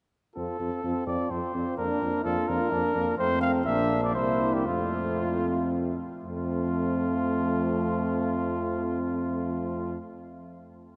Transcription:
0.36 tuba F2, french horn C4, flugelhorn F4, trumpet A4
0.60 tuba F2, french horn C4, flugelhorn F4
0.83 tuba F2, french horn C4, trombone C4, flugelhorn F4
1.07 tuba F2, french horn C4, flugelhorn F4, trumpet D5
1.30 tuba F2, french horn C4, flugelhorn F4, trumpet C5
1.54 tuba F2, french horn C4, flugelhorn F4
1.78 tuba F2, french horn A#3, trombone D4, flugelhorn D4, trumpet A#4
2.02 tuba F2, french horn A#3, flugelhorn D4
2.25 tuba F2, french horn A#3, flugelhorn D4, trombone F4, trumpet A4
2.48 tuba F2, french horn A#3, flugelhorn D4, trumpet A#4
2.71 tuba F2, french horn A#3, flugelhorn D4, trombone D4
2.95 tuba F2, french horn A#3, flugelhorn D4
3.18 tuba F2, french horn A3, trombone C4, flugelhorn C4, trumpet C5
3.41 trumpet F5
3.66 tuba A#1, french horn A#3, trombone D4, flugelhorn D4, trumpet E5
4.04 trumpet D5
4.14 tuba C2, french horn A#3, trombone E4, flugelhorn E4, trumpet C5
4.40 flugelhorn D4
4.54 trumpet G4
4.66 tuba F2, french horn A3, flugelhorn C4, trumpet F4, trombone F4
6.24 tuba F2, trombone F3, french horn A3, flugelhorn C4, trumpet F4

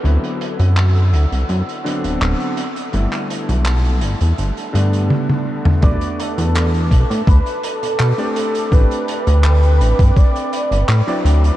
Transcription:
Already playing: ambient pad A4 F#5 E6
0.03 analog synth bass D2, electric grand piano D3 F#3 B3 C4 E4, closed hi-hat
0.24 closed hi-hat
0.41 closed hi-hat
0.59 analog synth bass F#2, closed hi-hat
0.77 clap, closed hi-hat
0.95 closed hi-hat
1.13 analog synth bass D2, closed hi-hat
1.32 analog synth bass C2, closed hi-hat
1.49 analog synth bass F#2, closed hi-hat
1.69 closed hi-hat
1.84 electric grand piano D3 F#3 B3 C4 D4, closed hi-hat
2.04 analog synth bass D1, closed hi-hat
2.21 analog synth bass D1, clap, closed hi-hat
2.40 closed hi-hat
2.57 ambient pad A5, closed hi-hat
2.76 closed hi-hat
2.92 analog synth bass G1, electric grand piano D3 G3 A3 B3 E4, closed hi-hat
3.12 clap, closed hi-hat
3.30 closed hi-hat
3.49 analog synth bass B1, closed hi-hat
3.65 clap, closed hi-hat
3.85 closed hi-hat
4.01 analog synth bass G1, closed hi-hat
4.21 analog synth bass E2, closed hi-hat
4.38 analog synth bass G1, closed hi-hat
4.57 closed hi-hat
4.73 analog synth bass G2, electric grand piano D3 G3 A3 B3 D4, closed hi-hat
4.93 closed hi-hat
5.10 high tom
5.29 high tom
5.65 mid tom
5.81 analog synth bass B1, electric grand piano A3 B3 D4 F#4 B4, ambient pad B4 A5 D6, soft synth lead D5, kick, closed hi-hat
6.01 closed hi-hat
6.19 soft synth lead A4, closed hi-hat
6.38 analog synth bass E2, closed hi-hat
6.55 clap, closed hi-hat
6.74 closed hi-hat
6.91 analog synth bass B1, kick, closed hi-hat
7.10 analog synth bass A2, closed hi-hat
7.27 analog synth bass D2, soft synth lead B4, kick, closed hi-hat
7.46 closed hi-hat
7.64 soft synth lead A4, closed hi-hat
7.83 analog synth bass B2, closed hi-hat
8.00 analog synth bass B2, clap, closed hi-hat
8.18 electric grand piano A3 C4 D4 G4 D5, closed hi-hat
8.36 ambient pad C4 G5 B5, soft synth lead A4, closed hi-hat
8.55 closed hi-hat
8.70 analog synth bass A1, electric grand piano A3 C4 D4 G4 B4, soft synth lead B4, kick, closed hi-hat
8.91 closed hi-hat
9.08 closed hi-hat
9.27 analog synth bass D2, closed hi-hat
9.44 clap, closed hi-hat
9.63 closed hi-hat
9.81 analog synth bass A1, closed hi-hat
9.99 analog synth bass G2, kick, closed hi-hat
10.17 soft synth lead D5, kick, closed hi-hat
10.36 closed hi-hat
10.53 closed hi-hat
10.71 analog synth bass G1, closed hi-hat
10.88 analog synth bass A2, clap, closed hi-hat
11.07 electric grand piano F#3 C4 D4 E4 D5, closed hi-hat
11.25 analog synth bass D2, ambient pad F#5 B5 E6, closed hi-hat
11.44 closed hi-hat

